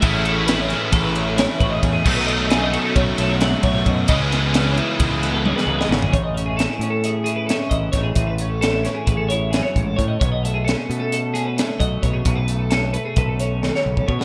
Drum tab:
CC |------------------|x-----------------|------------------|------------------|
RD |x-x-x-x-x-x-x-x-x-|--x-x-x-x-x-x-x-x-|x-x-x-x-x-x-------|------------------|
HH |------------------|------------------|------------------|x-x-x-x-x-x-x-x-x-|
SD |----o-o-----o-----|----o-------o-----|--o-o-----o--o-oo-|----o-------o---o-|
T1 |------------------|------------------|------------o-----|------------------|
FT |------------------|------------------|-----------------o|------------------|
BD |o-------o-----o-o-|o-------o-----o-o-|o-------o---------|o-------------o-o-|

CC |------------------|------------------|------------------|
RD |------------------|------------------|------------------|
HH |x-x-x-x-x-x-x-x-x-|x-x-x-x-x-x-x-x-x-|x-x-x-x-x-x-------|
SD |----o-o-----o-----|----o-------o-----|----o-------oo---o|
T1 |------------------|------------------|------------------|
FT |------------------|------------------|------------------|
BD |o-------o-----o-o-|o-------------o-o-|o-------o------oo-|